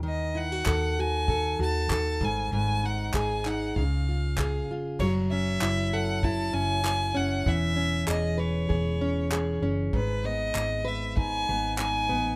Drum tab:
CC |--------|--------|x-------|--------|
CP |--x---x-|--xx--x-|--x---x-|--x---x-|
BD |--o-o-oo|--o-o-o-|o---o---|o---o---|

CC |--------|
CP |--x---x-|
BD |o---o---|